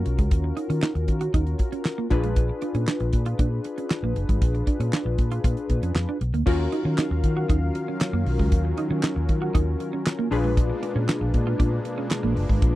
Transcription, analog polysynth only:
0.00 2.06 C#4 medium
0.00 2.07 F4 medium
0.00 2.07 F#4 medium
0.00 2.07 A#4 medium
2.10 6.17 D4 medium
2.10 6.17 F4 medium
2.10 6.17 G#4 medium
2.10 6.18 B4 medium
6.46 10.27 C#4 medium
6.46 10.27 F4 medium
6.46 10.27 F#4 medium
6.46 10.28 A#4 medium
10.31 12.75 D4 medium
10.31 12.75 F4 medium
10.31 12.75 G#4 medium
10.31 12.75 B4 medium

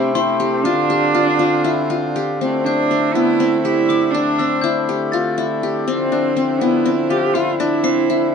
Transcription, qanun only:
0.00 1.01 C4 medium
0.00 0.66 D4 medium
0.00 0.15 E4 medium
0.00 0.39 G4 medium
0.15 0.71 E4 medium
0.40 0.90 G4 medium
0.65 1.14 F4 medium
0.90 2.15 G4 medium
1.15 1.39 F4 medium
1.39 1.70 F4 medium
1.64 1.96 E4 medium
1.90 3.24 F4 medium
2.16 3.41 G4 medium
2.41 2.90 C4 medium
2.66 4.14 D4 medium
2.91 3.21 C4 medium
3.15 3.46 B3 medium
3.40 4.39 C4 medium
3.65 4.88 G4 medium
3.90 4.63 E4 medium
4.14 5.64 D4 medium
4.39 5.87 C4 medium
4.64 5.19 E4 medium
4.89 5.63 G4 medium
5.13 5.44 F4 medium
5.38 6.77 E4 medium
5.63 6.89 G4 medium
5.88 6.36 C4 medium
6.12 7.59 D4 medium
6.37 6.67 C4 medium
6.61 6.92 B3 medium
6.86 7.83 C4 medium
7.10 7.41 F4 medium
7.35 8.09 E4 medium
7.60 8.35 D4 medium
7.84 8.35 C4 medium
8.10 8.35 E4 medium

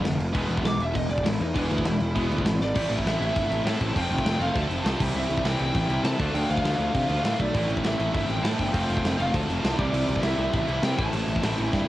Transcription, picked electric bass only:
0.03 0.32 F1 medium
0.34 0.48 E1 medium
0.48 0.63 E1 medium
0.63 0.78 B1 medium
0.78 0.93 E1 medium
0.95 1.09 E1 medium
1.09 1.24 E1 medium
1.25 1.39 A1 medium
1.40 1.54 E2 medium
1.55 1.69 E1 loud
1.70 1.84 D2 medium
1.85 1.99 E1 loud
2.00 2.14 E1 medium
2.16 2.29 E1 medium
2.30 2.44 D2 medium
2.44 2.73 G#1 medium
2.76 2.85 A1 loud
2.90 3.00 A1 medium
3.05 3.15 A1 medium
3.20 3.30 A1 loud
3.36 3.46 G1 loud
3.50 3.60 A1 medium
3.65 3.75 A2 medium
3.81 3.90 A1 medium
3.96 4.05 F1 medium
4.11 4.20 F1 loud
4.25 4.35 F1 loud
4.39 4.49 F1 loud
4.55 4.65 D2 loud
4.70 4.80 F1 medium
4.85 4.94 C2 medium
5.00 5.10 C2 loud
5.15 5.25 C2 loud
5.30 5.39 C2 loud
5.44 5.54 C2 medium
5.61 5.70 C2 loud
5.75 5.84 A1 medium
5.89 5.99 C2 medium
6.04 6.14 C3 medium
6.20 6.29 D2 medium
6.34 6.44 D2 loud
6.50 6.59 D2 loud
6.64 6.74 D2 loud
6.78 6.88 D2 loud
6.95 7.04 C3 medium
7.10 7.19 D2 medium
7.24 7.34 A2 medium
7.39 7.49 B1 medium
7.54 7.64 A1 medium
7.69 7.79 A1 medium
7.84 7.94 A1 medium
7.99 8.09 A1 medium
8.14 8.24 G1 medium
8.29 8.39 A1 medium
8.44 8.54 A2 medium
8.59 8.69 G1 medium
8.74 8.84 F1 medium
8.90 8.99 F1 loud
9.04 9.14 F1 medium
9.20 9.29 F1 loud
9.34 9.44 D2 medium
9.49 9.59 F1 loud
9.64 9.74 C2 medium
9.79 9.88 C2 loud
9.93 10.03 C2 loud
10.09 10.18 C2 loud
10.23 10.33 C2 loud
10.38 10.48 C2 loud
10.54 10.63 A1 medium
10.68 10.78 C2 medium
10.83 10.93 C3 medium
10.99 11.08 A1 medium
11.13 11.23 A1 medium
11.28 11.38 A1 loud
11.43 11.53 A1 medium
11.59 11.69 A1 loud
11.73 11.83 G2 medium

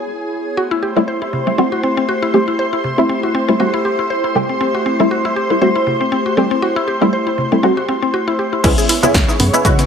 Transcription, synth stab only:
0.96 1.43 G3 loud
0.96 1.44 A3 medium
0.96 1.44 C4 medium
0.96 1.44 E4 loud
1.47 1.56 G3 medium
1.47 1.56 A3 medium
1.47 1.57 C4 medium
1.47 1.57 E4 medium
1.58 1.70 G3 medium
1.58 1.70 A3 medium
1.58 1.70 C4 medium
1.58 1.71 F#4 loud
2.33 2.46 G3 medium
2.33 2.46 A3 medium
2.33 2.46 C4 medium
2.33 2.46 G4 loud
2.98 3.45 G3 loud
2.98 3.45 A3 medium
2.98 3.45 C4 medium
2.98 3.45 E4 loud
3.48 3.58 G3 medium
3.48 3.58 A3 medium
3.48 3.58 C4 medium
3.48 3.58 E4 medium
3.60 3.72 G3 medium
3.60 3.72 A3 medium
3.60 3.72 C4 medium
3.60 3.72 F#4 loud
4.35 4.47 G3 medium
4.35 4.48 A3 medium
4.35 4.48 C4 medium
4.35 4.48 G4 loud
4.99 5.47 G3 loud
4.99 5.47 A3 medium
4.99 5.47 C4 medium
4.99 5.47 E4 loud
5.50 5.60 G3 medium
5.50 5.60 A3 medium
5.50 5.60 C4 medium
5.50 5.60 E4 medium
5.61 5.74 G3 loud
5.61 5.74 A3 medium
5.61 5.74 C4 medium
5.61 5.74 F#4 loud
6.37 6.49 G3 medium
6.37 6.49 A3 medium
6.37 6.49 C4 medium
6.37 6.50 G4 loud
7.01 7.48 G3 loud
7.01 7.49 A3 medium
7.01 7.49 C4 medium
7.01 7.49 E4 loud
7.52 7.61 G3 medium
7.52 7.62 A3 medium
7.52 7.62 C4 medium
7.52 7.62 E4 medium
7.63 7.75 G3 medium
7.63 7.75 A3 medium
7.63 7.75 C4 medium
7.63 7.76 F#4 loud
8.64 8.97 G#3 loud
8.64 8.98 B3 loud
8.64 8.98 C#4 medium
8.64 8.98 E4 loud
9.03 9.50 G#3 loud
9.03 9.50 B3 medium
9.03 9.50 C#4 medium
9.03 9.51 E4 loud
9.53 9.63 G#3 medium
9.53 9.63 B3 medium
9.53 9.63 C#4 medium
9.53 9.63 E4 medium
9.64 9.77 G#3 loud
9.64 9.77 B3 medium
9.64 9.77 C#4 medium
9.64 9.77 F#4 loud

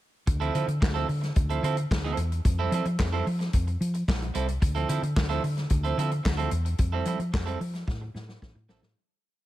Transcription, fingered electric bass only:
0.28 0.49 D2 loud
0.55 0.65 D3 loud
0.67 0.78 D3 medium
0.82 1.03 D2 loud
1.09 1.30 D3 medium
1.36 1.58 D2 medium
1.63 1.84 D3 loud
1.91 2.12 D2 medium
2.17 2.39 E2 medium
2.45 2.66 F2 medium
2.72 2.82 F3 loud
2.85 2.96 F3 medium
2.99 3.21 F2 loud
3.26 3.48 F3 medium
3.54 3.75 F2 medium
3.81 4.02 F3 loud
4.08 4.29 A#1 medium
4.35 4.56 C2 medium
4.62 4.83 D2 loud
4.89 5.00 D3 loud
5.02 5.13 D3 medium
5.16 5.38 D2 loud
5.43 5.65 D3 loud
5.70 5.92 D2 loud
5.97 6.19 D3 medium
6.25 6.46 D2 loud
6.51 6.73 E2 medium
6.79 7.01 F2 loud
7.06 7.17 F3 loud
7.19 7.30 F3 medium
7.33 7.55 F2 medium
7.61 7.82 F3 medium
7.87 8.09 A2 medium
8.14 8.36 A2 medium
8.42 8.53 A1 medium
8.55 8.66 A2 medium
8.69 8.80 A1 medium
8.83 8.94 A2 medium

